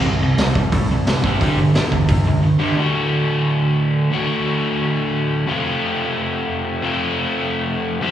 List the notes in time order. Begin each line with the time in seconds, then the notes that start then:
0.04 C2 C3 G3
0.20 C2 C3 G3
0.38 C2 C3 G3, snare, open hi-hat
0.55 A2 C3 G3, kick
0.72 A2 C3 G3, kick, open hi-hat
0.89 C2 C3 G3
1.06 C2 C3 G3, snare, open hi-hat
1.24 C3 G3 C4, kick
1.41 G1 G2 D3 G3, kick, open hi-hat
1.57 G1 G2 D3
1.74 G1 G2 D3, snare, open hi-hat
1.92 E2 G2 D3, kick
2.08 E2 G2 D3, kick, open hi-hat
2.25 C#2 G2 D3
2.43 G2 D3
2.59 G2 D3 G3
2.76 D2 A2 D3 A3 F#4
4.11 D2 A2 D3 A3 F#4
5.47 F2 C3 F3 A3 C4 F4
6.82 F2 C3 F3 A3 C4 F4
8.01 C3 G3 C4 E4 G4 C5